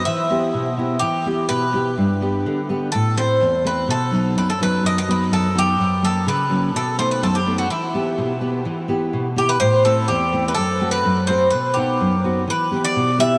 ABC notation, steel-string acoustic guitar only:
X:1
M:2/4
L:1/8
Q:1/4=126
K:Em
V:1 name="Steel-string acoustic guitar"
E, [B,EG] B,, [B,EG] | E, [B,EG] B,, [B,EG] | G,, [B,DG] D, [B,DG] | A,, [A,CE] E,, [A,CE] |
B,, [F,B,^D] F,, [F,B,D] | F,, [F,B,^D] F,, [F,B,D] | F,, [F,^A,^C] ^C, [F,A,C] | B,, [A,B,^D] F,, [A,B,D] |
E, [B,EG] B,, [B,EG] | E, [B,EG] B,, [B,EG] | A,, [A,CE] E,, [A,CE] | F,, [A,CF] F,, [A,CF] |
B,, [B,^Df] F,, [B,DF] | E, [B,EG] B,, [B,EG] |]